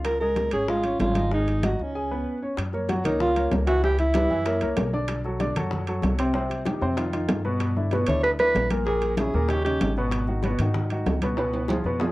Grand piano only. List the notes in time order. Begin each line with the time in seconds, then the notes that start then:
Already playing: F4 F5
0.21 G#3 G#4
0.53 C#4 C#5
0.68 G#3 G#4
0.84 C#4 C#5
1.16 D#4 D#5
1.32 G#3 G#4
1.63 D#4 D#5
1.95 G#4 G#5
2.11 B3 B4
2.43 C#4 C#5
2.74 A#3 A#4 C#5
2.89 F#3 F#4 F#5
3.05 A#3 A#4 C#5
3.36 A#3 A#4 C#5
3.67 E3 E4 E5
3.83 E3 E4 E5
4.15 G3 G4 B4
4.31 E3 E4 E5
4.46 A#3 A#4 C#5
4.62 A#3 A#4 C#5
4.93 D3 D4 D5
5.25 F#3 F#4 A4
5.40 D3 D4 D5
5.57 F#3 F#4 A4
5.88 F#3 F#4 A4
6.19 C3 C4 C5
6.35 C3 C4 C5
6.66 D#3 D#4 G4
6.81 C3 C4 C5
6.97 D#3 D#4 F4
7.13 D#3 D#4 F4
7.45 B2 B3 B4
7.76 D3 D4 E4
7.93 B2 B3 B4
8.08 D3 D4 E4
8.40 D3 D4 E4
8.71 A#2 A#3 A#4
8.87 A#2 A#3 A#4
9.19 C#3 C#4 E4
9.34 A#2 A#3 A#4
9.50 C#3 C#4 D#4
9.66 C#3 C#4 D#4
9.97 B2 B3 B4
10.28 D#3 D#4 F#4
10.45 B2 B3 B4
10.61 D#3 D#4 F#4
10.91 D#3 D#4 F#4
11.23 B2 B3 B4
11.38 B2 B3 B4
11.71 F3 F4 G#4
11.86 B2 B3 B4
12.01 F3 F4 G#4